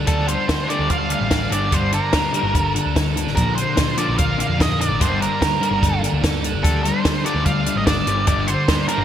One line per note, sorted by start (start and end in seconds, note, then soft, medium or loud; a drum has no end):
0.00 0.28 G3 medium
0.00 0.89 D4 medium
0.00 3.33 D4 medium
0.00 0.31 A4 medium
0.00 3.33 A5 medium
0.06 0.16 D2 medium
0.06 0.26 D3 medium
0.06 0.47 D3 medium
0.06 0.26 G3 medium
0.06 1.50 G3 medium
0.06 1.50 A3 medium
0.06 0.27 D4 loud
0.06 0.28 A4 medium
0.06 kick loud
0.06 closed hi-hat medium
0.18 0.35 D2 medium
0.27 0.46 D3 medium
0.27 0.46 G3 medium
0.27 0.68 G3 medium
0.27 0.70 C5 loud
0.27 closed hi-hat medium
0.48 0.66 D3 medium
0.48 1.51 D3 medium
0.48 0.67 G3 medium
0.48 kick loud
0.48 snare loud
0.48 closed hi-hat medium
0.67 0.87 D3 medium
0.67 0.88 G3 medium
0.67 1.51 G3 medium
0.67 0.88 D4 loud
0.67 0.90 D5 medium
0.67 closed hi-hat medium
0.79 1.13 D2 medium
0.89 1.08 D3 medium
0.89 1.08 G3 medium
0.89 1.30 D4 medium
0.89 1.11 F5 loud
0.89 kick loud
0.89 closed hi-hat medium
1.10 1.28 D3 medium
1.10 1.28 G3 medium
1.10 1.51 A3 medium
1.10 1.53 F5 medium
1.10 closed hi-hat medium
1.21 1.46 A1 medium
1.31 1.49 D3 medium
1.31 1.49 G3 medium
1.31 2.75 D4 medium
1.31 kick loud
1.31 snare loud
1.31 closed hi-hat medium
1.50 1.76 G1 loud
1.50 1.69 G2 medium
1.50 1.70 G2 medium
1.50 1.70 D3 medium
1.50 1.71 G3 medium
1.50 3.35 G3 medium
1.50 4.97 A#3 medium
1.50 1.73 D5 medium
1.50 closed hi-hat medium
1.70 1.90 G2 medium
1.70 2.74 G2 medium
1.70 1.91 D3 medium
1.70 1.91 G3 medium
1.70 1.94 C5 medium
1.70 kick loud
1.70 closed hi-hat medium
1.81 1.99 G1 medium
1.92 2.11 G2 medium
1.92 2.95 D3 medium
1.92 2.11 D3 medium
1.92 2.71 A#4 medium
1.92 closed hi-hat medium
2.13 2.31 G2 medium
2.13 2.31 D3 medium
2.13 3.15 G3 medium
2.13 kick loud
2.13 snare loud
2.13 closed hi-hat medium
2.33 2.52 G2 medium
2.33 2.53 D3 medium
2.33 2.53 G3 medium
2.33 3.98 A#3 medium
2.33 closed hi-hat medium
2.43 2.77 G1 medium
2.54 2.72 G2 medium
2.54 2.73 D3 medium
2.54 2.94 A4 medium
2.54 kick loud
2.54 closed hi-hat medium
2.75 2.93 G2 medium
2.75 2.93 D3 medium
2.75 3.15 D4 medium
2.75 closed hi-hat medium
2.86 3.26 D2 medium
2.95 3.14 G2 medium
2.95 3.14 D3 medium
2.95 3.36 A4 medium
2.95 kick loud
2.95 snare loud
2.95 closed hi-hat medium
3.15 3.34 G2 medium
3.15 3.34 D3 medium
3.15 4.39 D4 medium
3.15 closed hi-hat medium
3.26 3.35 A1 medium
3.26 snare soft
3.35 3.45 A#1 medium
3.35 3.55 A#2 medium
3.35 4.38 A#2 medium
3.35 3.55 D3 medium
3.35 3.55 F3 medium
3.35 4.99 F3 medium
3.35 9.04 D4 medium
3.35 3.55 A#4 medium
3.35 4.99 A#4 medium
3.35 kick loud
3.35 closed hi-hat medium
3.47 3.64 A#1 medium
3.55 3.75 A#2 medium
3.55 3.75 D3 medium
3.55 4.59 D3 medium
3.55 3.98 C5 loud
3.55 closed hi-hat medium
3.76 3.95 A#2 medium
3.76 3.95 D3 medium
3.76 4.80 F3 medium
3.76 kick loud
3.76 snare medium
3.76 closed hi-hat medium
3.97 4.15 A#2 medium
3.97 4.16 D3 medium
3.97 4.17 F3 loud
3.97 5.01 A#3 medium
3.97 4.18 D5 medium
3.97 closed hi-hat medium
4.08 4.42 A#1 medium
4.16 4.36 A#2 medium
4.16 4.36 D3 medium
4.16 4.58 A#4 medium
4.16 4.39 F5 loud
4.16 kick loud
4.16 closed hi-hat medium
4.38 4.56 A#2 medium
4.38 4.57 D3 medium
4.38 4.79 D4 medium
4.38 4.60 F5 medium
4.38 closed hi-hat medium
4.49 4.90 F2 medium
4.58 4.77 A#2 medium
4.58 4.77 D3 medium
4.58 5.00 A#4 medium
4.58 4.80 D#5 medium
4.58 kick loud
4.58 snare medium
4.58 closed hi-hat medium
4.79 4.98 A#2 medium
4.79 4.98 D3 medium
4.79 6.03 D4 medium
4.79 4.99 D5 medium
4.79 closed hi-hat medium
4.89 4.98 A1 medium
5.00 5.09 G1 medium
5.00 5.19 G2 medium
5.00 6.03 G2 medium
5.00 5.19 D3 medium
5.00 5.20 G3 medium
5.00 6.63 G3 medium
5.00 6.63 A#3 medium
5.00 5.22 C5 medium
5.00 9.04 A5 medium
5.00 kick loud
5.00 closed hi-hat medium
5.10 5.27 G1 medium
5.20 5.39 G2 medium
5.20 5.39 D3 medium
5.20 6.23 D3 medium
5.20 5.99 A#4 medium
5.20 closed hi-hat medium
5.40 5.59 G2 medium
5.40 5.60 D3 medium
5.40 6.84 G3 medium
5.40 kick loud
5.40 snare loud
5.40 closed hi-hat medium
5.61 5.80 G2 medium
5.61 5.80 D3 loud
5.61 5.81 G3 loud
5.61 6.63 A#3 medium
5.61 closed hi-hat medium
5.71 6.05 G1 medium
5.81 6.00 G2 medium
5.81 6.00 D3 medium
5.81 6.23 A4 medium
5.81 kick loud
5.81 closed hi-hat medium
6.01 6.20 G2 medium
6.01 6.21 D3 medium
6.01 6.44 D4 medium
6.01 closed hi-hat medium
6.12 6.54 D2 medium
6.21 6.40 G2 medium
6.21 6.40 D3 medium
6.21 6.88 A4 medium
6.21 kick loud
6.21 snare loud
6.21 closed hi-hat medium
6.43 6.61 G2 medium
6.43 6.62 D3 medium
6.43 7.45 D4 medium
6.43 closed hi-hat medium
6.53 6.61 G1 medium
6.63 6.72 D2 loud
6.63 6.82 D3 medium
6.63 7.03 D3 medium
6.63 6.83 G3 medium
6.63 9.04 G3 medium
6.63 8.05 A3 medium
6.63 6.83 D4 loud
6.63 6.83 A4 medium
6.63 kick loud
6.63 closed hi-hat loud
6.72 6.90 D2 medium
6.83 7.02 D3 medium
6.83 7.02 G3 medium
6.83 7.25 G3 medium
6.83 7.26 C5 loud
6.83 closed hi-hat medium
7.04 8.06 D3 medium
7.04 7.23 D3 medium
7.04 7.23 G3 medium
7.04 kick loud
7.04 snare loud
7.04 closed hi-hat medium
7.24 7.44 D3 medium
7.24 7.44 G3 loud
7.24 8.68 G3 medium
7.24 7.44 D4 loud
7.24 7.45 D5 medium
7.24 closed hi-hat medium
7.34 7.68 D2 medium
7.45 7.64 D3 medium
7.45 7.64 G3 medium
7.45 7.86 D4 medium
7.45 7.74 F5 loud
7.45 kick loud
7.45 closed hi-hat medium
7.66 7.85 D3 medium
7.66 7.84 G3 medium
7.66 8.07 A3 medium
7.66 closed hi-hat medium
7.76 8.01 G#1 medium
7.76 7.86 D#5 medium
7.86 8.05 D3 medium
7.86 8.05 G3 medium
7.86 8.07 D4 medium
7.86 8.27 D5 medium
7.86 kick loud
7.86 snare loud
7.86 closed hi-hat medium
8.06 8.32 G1 loud
8.06 8.25 G2 medium
8.06 8.26 D3 medium
8.06 8.26 G3 medium
8.06 9.04 A#3 medium
8.06 closed hi-hat medium
8.26 8.46 G2 medium
8.26 9.04 G2 medium
8.26 8.46 D3 medium
8.26 8.46 G3 medium
8.26 8.49 D5 medium
8.26 kick loud
8.26 closed hi-hat medium
8.37 8.54 G1 medium
8.47 8.66 G2 medium
8.47 9.04 D3 medium
8.47 8.67 D3 medium
8.47 8.88 C5 loud
8.47 closed hi-hat medium
8.68 8.86 G2 medium
8.68 8.87 D3 medium
8.68 9.04 G3 medium
8.68 kick loud
8.68 snare loud
8.68 closed hi-hat medium
8.88 9.04 G2 medium
8.88 9.04 D3 medium
8.88 9.04 G3 medium
8.88 9.04 A#3 medium
8.88 9.04 A#4 medium
8.88 closed hi-hat medium
8.98 9.04 G1 medium